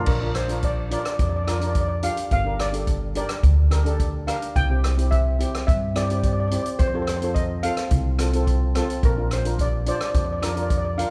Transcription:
0.06 A#1 A#4, kick, crash
0.21 D4 F4 A#4
0.35 C5, cross-stick, closed hi-hat
0.48 D4 F4 A#4, closed hi-hat
0.63 D5, kick, closed hi-hat
0.90 D4 F4 A#4 D5, closed hi-hat
0.99 D5
1.05 D5, cross-stick, closed hi-hat
1.14 D5
1.19 F2 D5, kick, closed hi-hat
1.29 D5
1.36 D5
1.45 D4 F4 A#4 D5, cross-stick, closed hi-hat
1.51 D5
1.60 D4 F4 A#4 D5, closed hi-hat
1.67 D5
1.73 D5, kick, closed hi-hat
1.81 D5
1.89 D5
2.03 D4 F4 G4 F5, closed hi-hat
2.17 closed hi-hat
2.31 G1 F5, kick, closed hi-hat
2.45 D4 G4 A#4
2.60 D5, cross-stick, closed hi-hat
2.73 D4 G4 A4, closed hi-hat
2.87 kick, closed hi-hat
3.15 D4 G4 A#4 D5, closed hi-hat
3.29 cross-stick, closed hi-hat
3.43 D2, kick, closed hi-hat
3.71 D4 G4 A#4, cross-stick, closed hi-hat
3.85 D4 G4 A4, closed hi-hat
4.00 kick, closed hi-hat
4.27 D4 G4 A#4 F5, cross-stick, closed hi-hat
4.42 closed hi-hat
4.56 C2 G5, kick, closed hi-hat
4.70 C4 E4 G4
4.84 cross-stick, closed hi-hat
4.97 C4 E4 G4, closed hi-hat
5.11 E5, kick, closed hi-hat
5.39 C4 E4 G4, closed hi-hat
5.55 cross-stick, closed hi-hat
5.67 G2 E5, kick, closed hi-hat
5.95 C4 E4 G4 D5, cross-stick, closed hi-hat
6.02 D5
6.09 C4 E4 G4 D5, closed hi-hat
6.18 D5
6.23 D5, kick, closed hi-hat
6.33 D5
6.40 D5
6.48 C4 D5, closed hi-hat
6.52 E4 G4 D5
6.63 D5, closed hi-hat
6.79 F2 C5, kick, closed hi-hat
6.88 C5
6.94 C4 F4 A4 C5
7.02 C5
7.07 C5, cross-stick, closed hi-hat
7.17 C5
7.22 C4 F4 A4 C5, closed hi-hat
7.35 D#5, kick, closed hi-hat
7.63 C4 F4 A4 F5, closed hi-hat
7.77 cross-stick, closed hi-hat
7.91 C2, kick, closed hi-hat
8.19 C4 F4 A4, cross-stick, closed hi-hat
8.33 C4 F4 A4, closed hi-hat
8.47 kick, closed hi-hat
8.75 C4 F4 A4, cross-stick, closed hi-hat
8.90 closed hi-hat
9.03 A#1 A#4, kick, closed hi-hat
9.17 D4 F4 A#4
9.31 C5, cross-stick, closed hi-hat
9.45 D4 F4 A#4, closed hi-hat
9.59 D5, kick, closed hi-hat
9.86 D4 F4 C5 D5, closed hi-hat
9.95 D5
10.01 D5, cross-stick, closed hi-hat
10.11 F2 D5, kick, closed hi-hat
10.18 D5
10.26 D5
10.32 D5
10.40 D4 F4 A#4 D5, cross-stick, closed hi-hat
10.48 D5
10.55 D4 F4 A#4 D5, closed hi-hat
10.63 D5
10.70 D5, kick, closed hi-hat
10.78 D5
10.85 D5
10.97 D4 F4 A#4 F5, closed hi-hat

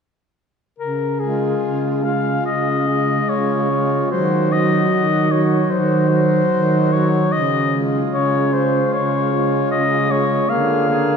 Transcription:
0.78 C#3 A#4
1.20 G#3 F4 G#4
1.63 C#3
2.03 G#3 F4 F5
2.46 C#3 D#5
2.88 G#3 F4
3.29 C#3 C#5
3.70 G#3 F4
4.10 D#3 F#3 F#4 C5
4.51 F#3 F#4 D#5
4.93 D#3
5.30 F#3 F#4 C#5
5.71 D#3 C5
6.09 F#3 F#4
6.52 D#3
6.92 F#3 F#4 C#5
7.32 C#3 D#5
7.70 G#3 F4
8.12 C#3 C#5
8.51 G#3 F4 C5
8.92 C#3 C#5
9.30 G#3 F4
9.70 C#3 D#5
10.09 G#3 F4 C#5
10.48 D3 A#3 G#4 F5
10.87 A#3 G#4

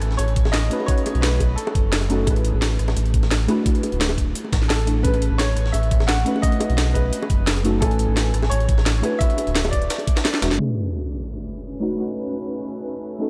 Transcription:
Already playing: A3 C#4 E4 A4 B4 G#5
0.01 A1, cross-stick, closed hi-hat
0.11 snare
0.17 A1 C#5, closed hi-hat, high bongo
0.28 closed hi-hat
0.36 kick, closed hi-hat
0.45 snare, high bongo
0.52 D#5, snare, closed hi-hat
0.70 A3 C#4 D#4 F#4 B4, closed hi-hat
0.80 high bongo
0.86 A3 C#4 D#4 C#5, kick, closed hi-hat
0.90 F#4 B4
0.98 closed hi-hat
1.06 closed hi-hat, high bongo
1.15 B1, closed hi-hat
1.21 B4, snare, closed hi-hat
1.40 B1, kick, closed hi-hat, high bongo
1.56 A4, closed hi-hat
1.67 high bongo
1.75 F#1, kick, closed hi-hat
1.93 snare, closed hi-hat
2.01 closed hi-hat, high bongo
2.09 A3 C#4 D#4 F#4 A4, closed hi-hat
2.25 A1 A3 C#4 E4, kick, closed hi-hat, high bongo
2.29 G#4 B4
2.36 closed hi-hat
2.45 closed hi-hat
2.54 A1
2.62 snare, closed hi-hat, high bongo
2.79 A1, cross-stick, closed hi-hat
2.88 snare, high bongo
2.97 A1, closed hi-hat
3.06 closed hi-hat
3.14 kick, closed hi-hat
3.23 snare, high bongo
3.31 snare, closed hi-hat
3.47 A3 D4 E4 F#4 B4, closed hi-hat, high bongo
3.63 A3 D4 E4, kick, closed hi-hat
3.67 F#4 B4
3.75 closed hi-hat
3.83 closed hi-hat, high bongo
3.92 D1, closed hi-hat
4.01 snare, closed hi-hat
4.09 high bongo
4.18 D1, kick, closed hi-hat
4.35 closed hi-hat
4.44 high bongo
4.53 A1, kick, snare, closed hi-hat
4.62 snare
4.68 A4, snare, closed hi-hat, high bongo
4.79 closed hi-hat
4.86 A3 D4 E4 F#4 A4, closed hi-hat
5.02 A1 A3 C#4 E4 B4, kick, closed hi-hat
5.06 G#4 B4
5.14 closed hi-hat, high bongo
5.22 closed hi-hat
5.31 A1
5.38 C#5, snare, closed hi-hat, high bongo
5.57 A1, cross-stick, closed hi-hat
5.66 snare
5.72 A1 E5, closed hi-hat, high bongo
5.83 closed hi-hat
5.91 kick, closed hi-hat
6.00 snare, high bongo
6.07 F#5, snare, closed hi-hat
6.24 A3 C#4 D#4 F#4 B4, closed hi-hat
6.36 high bongo
6.40 A3 C#4 D#4 D#5, kick, closed hi-hat
6.45 F#4 B4
6.52 closed hi-hat
6.60 closed hi-hat, high bongo
6.70 B1, closed hi-hat
6.78 snare, closed hi-hat
6.94 B1 B4, kick, closed hi-hat, high bongo
7.13 closed hi-hat
7.23 high bongo
7.30 F#1, kick, closed hi-hat
7.47 snare, closed hi-hat
7.57 closed hi-hat, high bongo
7.63 A3 C#4 D#4 F#4 A4, closed hi-hat
7.79 A1 A3 C#4 E4 A4, kick, closed hi-hat, high bongo
7.83 B4 G#5
7.91 closed hi-hat
7.99 closed hi-hat
8.08 A1
8.17 snare, closed hi-hat, high bongo
8.34 A1, cross-stick, closed hi-hat
8.42 snare, high bongo
8.50 A1 C#5, closed hi-hat
8.60 closed hi-hat
8.69 kick, closed hi-hat
8.78 snare, high bongo
8.86 snare, closed hi-hat
9.02 A3 D4 E4 F#4 B4, closed hi-hat, high bongo
9.18 A3 D4 E4 E5, kick, closed hi-hat
9.22 F#4 B4
9.30 closed hi-hat
9.38 closed hi-hat, high bongo
9.47 D1, closed hi-hat
9.55 snare, closed hi-hat
9.64 closed hi-hat, high bongo
9.71 D1 D5, kick, closed hi-hat
9.82 closed hi-hat
9.90 snare, closed hi-hat
9.98 closed hi-hat, high bongo
10.07 kick, closed hi-hat
10.16 snare, closed hi-hat
10.25 snare, closed hi-hat, high bongo
10.34 snare, closed hi-hat
10.41 E1 G#3 D4 E4 F#4 B4, snare, closed hi-hat
10.51 G#1, snare
10.57 A3 C#4 G#4 B4, sub drop
10.61 G#4 B4
11.80 A3 C#4 D#4 F#4 B4
11.96 A3 C#4 D#4
12.00 F#4 B4
13.19 A3 C#4 D#4 F#4 A4

